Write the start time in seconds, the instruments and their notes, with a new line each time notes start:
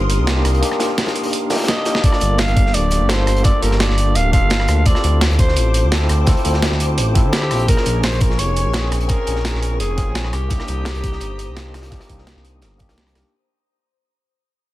Already playing: analog synth bass G1, tine electric piano A#3 D4 D#4 G4, ambient pad A#4 C6 D#6
0.10 closed hi-hat
0.19 analog synth bass C2
0.26 tine electric piano A#3 D4 D#4 G4, snare, closed hi-hat
0.45 analog synth bass C2, cross-stick, closed hi-hat
0.55 closed hi-hat
0.61 tine electric piano A#3 D4 D#4, closed hi-hat
0.65 tine electric piano G4
0.72 cross-stick
0.80 snare, closed hi-hat
0.98 snare, closed hi-hat, open hi-hat
1.06 snare, closed hi-hat
1.16 closed hi-hat
1.23 open hi-hat
1.33 closed hi-hat
1.50 tine electric piano A#3 D4 D#4 G4, snare, closed hi-hat
1.55 snare, closed hi-hat
1.59 snare, closed hi-hat
1.64 snare, closed hi-hat
1.68 alto saxophone D#5, snare, closed hi-hat
1.76 tine electric piano A#3 D4 D#4 G4
1.85 snare, closed hi-hat
1.95 snare
2.02 tine electric piano A#3 D4 F4, ambient pad G4, alto saxophone D5, kick, closed hi-hat
2.06 tine electric piano A4
2.13 cross-stick, snare
2.21 analog synth bass G1, closed hi-hat
2.38 alto saxophone F5, snare, closed hi-hat
2.48 analog synth bass G1, closed hi-hat
2.57 kick, closed hi-hat
2.66 snare
2.74 analog synth bass D1, alto saxophone D5, closed hi-hat
2.91 closed hi-hat
3.01 analog synth bass G1
3.09 tine electric piano A#3 D4 F4 A4, alto saxophone C5, snare, closed hi-hat
3.27 analog synth bass G1, cross-stick, closed hi-hat
3.36 closed hi-hat
3.43 tine electric piano A#3 D4 F4 A4, alto saxophone D5, kick, closed hi-hat
3.63 analog synth bass G1, alto saxophone A#4, closed hi-hat
3.71 snare
3.80 alto saxophone D5, snare, closed hi-hat
3.89 analog synth bass G1, snare
3.98 closed hi-hat
4.15 analog synth bass D1, alto saxophone F5, closed hi-hat
4.31 tine electric piano A#3 D4 F4 A4, alto saxophone F5, kick, closed hi-hat
4.42 analog synth bass G1
4.50 snare, closed hi-hat
4.60 cross-stick
4.68 analog synth bass D2, cross-stick, closed hi-hat
4.84 tine electric piano C4 E4 F4 A4, ambient pad C5 D6, alto saxophone D5, kick, closed hi-hat
4.95 cross-stick, snare
5.04 analog synth bass D2, closed hi-hat
5.21 snare, closed hi-hat
5.30 analog synth bass D2, closed hi-hat
5.39 alto saxophone C5, kick, closed hi-hat
5.48 snare
5.56 analog synth bass A1, closed hi-hat
5.74 closed hi-hat
5.83 analog synth bass D2
5.91 tine electric piano C4 E4 F4 A4, snare, closed hi-hat
6.09 analog synth bass D2, cross-stick, closed hi-hat
6.25 tine electric piano C4 E4 F4 A4, kick, snare, closed hi-hat
6.37 closed hi-hat
6.45 analog synth bass D2, closed hi-hat
6.53 snare
6.62 snare, closed hi-hat
6.71 analog synth bass D2, snare
6.80 closed hi-hat
6.98 analog synth bass A1, closed hi-hat
7.15 tine electric piano C4 E4 F4 A4, kick, closed hi-hat
7.24 analog synth bass D2
7.33 alto saxophone G4, snare, closed hi-hat
7.41 tine electric piano C4 E4 F4 A4, cross-stick
7.51 analog synth bass A#1, cross-stick, closed hi-hat, open hi-hat
7.60 closed hi-hat
7.67 tine electric piano A#3 C#4 G#4, alto saxophone A#4, ambient pad A#4 G#5 C#6, kick, closed hi-hat
7.77 cross-stick, snare
7.86 analog synth bass A#1, closed hi-hat
8.03 alto saxophone C5, snare, closed hi-hat
8.12 analog synth bass A#1, closed hi-hat
8.21 alto saxophone A#4, kick, closed hi-hat
8.30 snare
8.39 analog synth bass F1, alto saxophone C#5, closed hi-hat
8.56 closed hi-hat
8.66 analog synth bass A#1
8.73 tine electric piano C4 C#4 F4 G#4, snare, closed hi-hat
8.92 analog synth bass A#1, cross-stick, closed hi-hat
9.01 closed hi-hat
9.08 tine electric piano C4 C#4 F4 G#4, alto saxophone A#4, kick, closed hi-hat
9.27 analog synth bass A#1, closed hi-hat
9.36 snare
9.45 snare, closed hi-hat
9.54 analog synth bass A#1, snare
9.63 closed hi-hat
9.80 analog synth bass F1, alto saxophone G#4, closed hi-hat
9.97 tine electric piano C4 C#4 F4 G#4, kick, closed hi-hat
10.07 analog synth bass A#1
10.15 snare, closed hi-hat
10.24 cross-stick
10.33 analog synth bass C2, alto saxophone G4, ambient pad C5 A#5 D#6, cross-stick, closed hi-hat
10.49 tine electric piano A#3 D4 D#4 G4, kick, closed hi-hat
10.59 cross-stick, snare
10.68 analog synth bass C2, closed hi-hat
10.85 snare, closed hi-hat
10.95 analog synth bass C2, closed hi-hat
11.04 kick, closed hi-hat
11.12 snare
11.21 analog synth bass G1, closed hi-hat
11.39 closed hi-hat
11.48 analog synth bass C2
11.56 tine electric piano A#3 D4 D#4 G4, snare, closed hi-hat
11.74 analog synth bass C2, cross-stick, snare, closed hi-hat
11.82 snare, closed hi-hat
11.90 tine electric piano A#3 D4 D#4 G4, kick, snare, closed hi-hat
12.00 cross-stick, snare, closed hi-hat
12.09 analog synth bass C2, kick, closed hi-hat
12.18 snare
12.27 snare, closed hi-hat
12.36 analog synth bass C2, snare
12.45 closed hi-hat
12.62 analog synth bass G1, snare, closed hi-hat
12.78 tine electric piano A#3 D4 D#4 G4, kick, closed hi-hat
12.89 analog synth bass C2, snare, closed hi-hat
12.98 snare, closed hi-hat
13.07 cross-stick, closed hi-hat
13.15 analog synth bass C2, cross-stick, snare, closed hi-hat